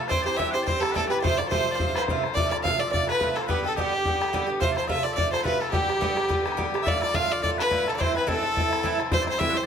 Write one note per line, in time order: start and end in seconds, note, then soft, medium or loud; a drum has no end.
0.00 0.10 A3 medium
0.00 0.10 F4 medium
0.08 0.26 G2 medium
0.08 0.26 E3 medium
0.08 0.26 C4 loud
0.08 0.24 G4 loud
0.08 0.24 C5 loud
0.08 0.25 C5 medium
0.08 0.22 C5 medium
0.08 0.10 D5 medium
0.08 bodhran medium
0.22 0.38 G4 medium
0.22 0.38 C5 medium
0.22 0.26 D5 medium
0.26 0.37 E3 soft
0.26 0.38 C4 medium
0.26 0.39 C5 medium
0.26 bodhran medium
0.37 0.54 G2 medium
0.37 0.55 E3 medium
0.37 0.54 C4 medium
0.37 0.53 G4 loud
0.37 0.52 E5 loud
0.37 0.51 E5 medium
0.37 0.54 E5 loud
0.37 bodhran medium
0.51 0.67 G4 medium
0.51 0.64 C5 medium
0.51 0.63 C5 medium
0.51 0.65 C5 medium
0.51 0.54 F#5 medium
0.55 0.65 E3 soft
0.55 0.66 C4 medium
0.63 0.82 G2 medium
0.63 0.82 E3 medium
0.63 0.82 C5 medium
0.63 0.67 D5 medium
0.67 0.82 C4 medium
0.67 0.80 G4 medium
0.67 0.83 C5 medium
0.67 bodhran medium
0.81 0.94 E3 soft
0.81 0.94 C4 medium
0.81 0.94 G4 medium
0.81 0.94 A4 loud
0.81 0.93 A4 medium
0.81 0.92 A4 medium
0.81 bodhran medium
0.92 1.11 G2 medium
0.92 1.11 E3 medium
0.92 1.10 C4 medium
0.92 1.09 A4 medium
0.92 1.08 A4 loud
0.92 1.07 A4 medium
0.92 0.95 B4 medium
0.92 bodhran medium
0.96 1.09 G4 medium
1.07 1.23 C4 medium
1.07 1.23 G4 medium
1.07 1.21 B4 medium
1.07 1.23 B4 medium
1.07 1.19 B4 medium
1.07 1.11 D5 medium
1.12 1.24 E3 soft
1.12 bodhran medium
1.19 1.39 C3 medium
1.19 1.39 C5 loud
1.19 1.38 C5 medium
1.19 1.23 D5 medium
1.23 1.39 F3 medium
1.23 1.39 A3 medium
1.23 1.38 F4 medium
1.23 1.40 C5 medium
1.23 bodhran loud
1.38 1.50 F3 soft
1.38 1.50 A3 medium
1.38 1.52 F4 soft
1.38 1.48 D5 medium
1.38 1.50 D5 medium
1.38 1.52 D5 medium
1.38 bodhran medium
1.49 1.67 C3 medium
1.49 1.67 F3 medium
1.49 1.67 A3 medium
1.49 1.66 F4 medium
1.49 1.73 C5 loud
1.49 1.74 C5 medium
1.49 1.71 C5 medium
1.49 bodhran medium
1.67 1.80 F3 soft
1.67 1.80 A3 soft
1.67 1.79 F4 medium
1.71 1.96 C5 medium
1.71 1.76 D5 medium
1.76 1.95 C3 medium
1.76 1.97 C5 medium
1.76 1.95 C5 medium
1.80 1.96 F3 medium
1.80 1.96 A3 medium
1.80 1.95 F4 medium
1.80 bodhran medium
1.95 2.09 F3 soft
1.95 2.09 A3 soft
1.95 2.08 F4 medium
1.95 1.99 B4 medium
1.95 1.98 C5 loud
1.95 2.22 C5 medium
1.95 2.36 C5 medium
1.95 1.99 D5 medium
1.95 bodhran medium
2.02 bodhran medium
2.08 2.24 C3 medium
2.08 2.25 F3 medium
2.08 2.25 A3 medium
2.08 2.24 F4 medium
2.08 bodhran medium
2.24 2.36 F3 soft
2.24 2.37 A3 soft
2.24 2.37 F4 soft
2.24 bodhran medium
2.34 2.52 C3 medium
2.34 2.53 F3 medium
2.34 2.52 A3 medium
2.34 2.51 F4 medium
2.34 2.50 D5 loud
2.34 2.50 D5 medium
2.34 2.48 D5 medium
2.34 bodhran medium
2.48 2.64 F4 medium
2.48 2.57 D5 medium
2.48 2.63 D5 medium
2.48 2.52 E5 medium
2.48 bodhran medium
2.53 2.64 F3 medium
2.53 2.64 A3 soft
2.63 2.80 C3 medium
2.63 2.80 F3 medium
2.63 2.80 A3 medium
2.63 2.79 F4 medium
2.63 2.81 F5 loud
2.63 2.79 F5 medium
2.63 bodhran loud
2.79 2.92 F3 soft
2.79 2.93 A3 soft
2.79 2.92 F4 medium
2.79 2.90 D5 medium
2.79 2.87 D5 medium
2.79 2.91 D5 medium
2.87 2.91 E5 medium
2.91 3.08 C3 medium
2.91 3.08 F3 medium
2.91 3.07 A3 medium
2.91 3.06 F4 medium
2.91 3.09 D5 medium
2.91 3.06 D5 medium
2.91 3.07 D5 medium
2.91 bodhran medium
3.07 3.19 F3 soft
3.07 3.20 A3 medium
3.07 3.20 F4 medium
3.07 3.19 B4 medium
3.07 3.37 B4 loud
3.07 3.19 B4 medium
3.07 bodhran medium
3.19 3.36 C3 medium
3.19 3.36 F3 medium
3.19 3.35 A3 medium
3.19 3.34 F4 medium
3.19 3.38 B4 medium
3.19 3.35 B4 medium
3.19 bodhran medium
3.36 3.48 F3 soft
3.36 3.48 A3 soft
3.36 3.48 F4 medium
3.36 3.47 A4 medium
3.36 3.49 A4 medium
3.36 3.42 D5 medium
3.36 bodhran medium
3.42 3.47 C5 medium
3.47 3.64 G2 medium
3.47 3.64 D3 medium
3.47 3.65 B3 medium
3.47 3.64 G4 medium
3.47 3.69 B4 medium
3.47 3.63 B4 medium
3.47 bodhran medium
3.65 3.77 D3 medium
3.65 3.77 B3 medium
3.65 3.77 G4 medium
3.65 3.76 A4 medium
3.65 3.78 A4 medium
3.65 3.76 A4 medium
3.76 3.93 G2 medium
3.76 3.93 D3 medium
3.76 3.93 B3 loud
3.76 4.60 G4 medium
3.76 4.45 G4 medium
3.76 4.45 G4 loud
3.76 3.92 G4 medium
3.76 bodhran medium
3.93 4.05 D3 soft
3.93 4.06 B3 soft
3.93 4.05 G4 soft
4.05 4.21 G2 medium
4.05 4.21 D3 medium
4.05 4.20 B3 medium
4.05 4.20 G4 medium
4.05 bodhran medium
4.21 4.33 D3 soft
4.21 4.33 B3 soft
4.21 4.33 G4 medium
4.21 bodhran medium
4.33 4.49 G2 loud
4.33 4.48 D3 loud
4.33 4.47 B3 loud
4.33 4.45 G4 loud
4.33 bodhran medium
4.46 4.60 D3 medium
4.46 4.61 B3 medium
4.46 4.60 G4 medium
4.60 4.77 C3 medium
4.60 4.77 F3 medium
4.60 4.76 A3 medium
4.60 4.74 F4 medium
4.60 4.72 C5 medium
4.60 4.75 C5 loud
4.60 4.76 C5 medium
4.60 bodhran medium
4.72 4.88 F4 medium
4.72 4.88 C5 medium
4.72 4.76 D5 medium
4.77 4.88 F3 soft
4.77 4.88 A3 soft
4.77 4.88 C5 medium
4.77 4.89 C5 medium
4.77 bodhran medium
4.88 5.05 C3 medium
4.88 5.05 F3 medium
4.88 5.04 A3 medium
4.88 5.03 F4 loud
4.88 5.06 E5 medium
4.88 5.05 E5 loud
4.88 5.04 E5 medium
4.88 bodhran medium
5.03 5.16 F3 soft
5.03 5.17 A3 soft
5.03 5.17 F4 medium
5.03 5.14 D5 medium
5.03 5.16 D5 medium
5.03 5.13 D5 medium
5.13 5.32 C3 medium
5.13 5.31 D5 medium
5.13 5.17 E5 medium
5.17 5.33 F3 medium
5.17 5.31 A3 medium
5.17 5.30 F4 medium
5.17 5.33 D5 medium
5.17 5.32 D5 medium
5.17 bodhran medium
5.31 5.43 F3 soft
5.31 5.44 A3 medium
5.31 5.44 F4 medium
5.31 5.44 C5 medium
5.31 5.46 C5 medium
5.31 bodhran medium
5.44 5.61 C3 medium
5.44 5.61 F3 medium
5.44 5.60 A3 medium
5.44 5.59 F4 medium
5.44 5.60 B4 medium
5.44 5.57 B4 loud
5.44 5.62 B4 medium
5.44 bodhran medium
5.57 5.73 F4 medium
5.57 5.73 A4 medium
5.57 5.71 A4 medium
5.57 5.62 B4 medium
5.61 5.73 F3 soft
5.61 5.73 A3 soft
5.61 5.74 A4 soft
5.61 bodhran medium
5.71 5.89 G2 medium
5.71 5.89 D3 medium
5.71 5.89 B3 medium
5.71 6.53 G4 medium
5.71 6.86 G4 medium
5.71 6.54 G4 medium
5.71 5.88 G4 medium
5.71 bodhran medium
5.89 6.00 D3 soft
5.89 6.01 B3 soft
5.89 6.01 G4 medium
5.89 bodhran medium
6.01 6.17 G2 medium
6.01 6.17 D3 medium
6.01 6.17 B3 medium
6.01 6.15 G4 medium
6.01 bodhran medium
6.16 6.28 D3 soft
6.16 6.29 B3 soft
6.16 6.29 G4 medium
6.16 bodhran medium
6.28 6.45 G2 medium
6.28 6.45 D3 medium
6.28 6.46 B3 medium
6.28 6.44 G4 medium
6.28 bodhran medium
6.45 6.56 D3 soft
6.45 6.57 B3 medium
6.45 6.57 G4 medium
6.45 bodhran medium
6.52 bodhran medium
6.57 6.73 G2 medium
6.57 6.74 D3 medium
6.57 6.73 B3 loud
6.57 6.73 G4 medium
6.57 bodhran medium
6.74 6.85 D3 soft
6.74 6.87 B3 soft
6.74 6.86 G4 medium
6.74 bodhran medium
6.83 7.02 A2 medium
6.83 6.97 D5 medium
6.83 6.89 E5 medium
6.83 bodhran medium
6.87 7.02 D3 medium
6.87 7.02 A3 medium
6.87 7.00 F4 loud
6.87 7.01 D5 loud
6.97 7.15 D5 medium
6.97 7.01 E5 medium
7.02 7.14 D3 medium
7.02 7.14 A3 medium
7.02 7.14 F4 medium
7.02 7.16 D5 loud
7.02 bodhran medium
7.14 7.30 A2 medium
7.14 7.31 D3 medium
7.14 7.30 A3 medium
7.14 7.29 F4 loud
7.14 7.43 F5 loud
7.14 7.33 F5 loud
7.14 bodhran medium
7.30 7.43 D3 soft
7.30 7.43 A3 soft
7.30 7.43 F4 medium
7.30 7.42 D5 loud
7.42 7.58 A2 medium
7.42 7.59 D3 medium
7.42 7.58 A3 medium
7.42 7.57 F4 medium
7.42 7.58 D5 medium
7.42 7.50 D5 loud
7.42 bodhran medium
7.58 7.70 D3 soft
7.58 7.71 A3 soft
7.58 7.71 F4 soft
7.58 7.87 B4 medium
7.58 7.91 B4 loud
7.58 bodhran medium
7.71 7.87 A2 medium
7.71 7.87 D3 medium
7.71 7.87 A3 medium
7.71 7.85 F4 medium
7.71 bodhran medium
7.86 7.99 D3 soft
7.86 7.99 A3 soft
7.86 7.99 F4 medium
7.86 7.99 A4 medium
7.86 7.95 A4 medium
7.86 bodhran medium
7.96 8.14 A2 medium
7.96 8.15 E3 medium
7.96 8.14 C4 medium
7.96 8.13 E4 medium
7.96 8.15 C5 medium
7.96 8.02 D5 medium
8.01 8.16 C5 loud
8.01 bodhran medium
8.14 8.25 E3 medium
8.14 8.26 C4 medium
8.14 8.27 E4 medium
8.14 8.28 B4 medium
8.14 8.27 B4 medium
8.14 bodhran medium
8.27 8.43 A2 medium
8.27 8.43 E3 medium
8.27 8.43 C4 loud
8.27 8.42 E4 loud
8.27 9.12 A4 medium
8.27 8.97 A4 loud
8.27 bodhran medium
8.43 8.55 E3 soft
8.43 8.56 C4 soft
8.43 8.55 E4 soft
8.55 8.71 A2 medium
8.55 8.72 E3 medium
8.55 8.72 C4 medium
8.55 8.69 E4 medium
8.55 bodhran medium
8.71 8.83 E3 soft
8.71 8.83 C4 medium
8.71 8.83 E4 medium
8.71 bodhran medium
8.83 8.99 A2 medium
8.83 8.99 E3 medium
8.83 8.99 C4 medium
8.83 8.97 E4 loud
8.83 bodhran medium
8.98 9.10 E3 soft
8.98 9.12 C4 medium
8.98 9.11 E4 medium
8.98 bodhran medium
9.11 9.28 G2 medium
9.11 9.28 E3 medium
9.11 9.28 C4 medium
9.11 9.26 E4 medium
9.11 9.23 C5 loud
9.11 9.27 C5 loud
9.11 bodhran loud
9.23 9.27 D5 medium
9.27 9.39 E3 soft
9.27 9.39 C4 soft
9.27 9.40 E4 medium
9.27 9.38 C5 medium
9.27 9.41 C5 loud
9.27 bodhran medium
9.38 9.55 G2 medium
9.38 9.56 E3 loud
9.38 9.56 C4 loud
9.38 9.54 E4 loud
9.38 9.50 E5 medium
9.38 9.59 E5 loud
9.38 bodhran medium
9.50 9.54 F#5 medium
9.54 9.66 E3 soft
9.54 9.66 C4 soft
9.54 9.66 E4 medium
9.54 9.64 C5 medium
9.54 9.66 C5 medium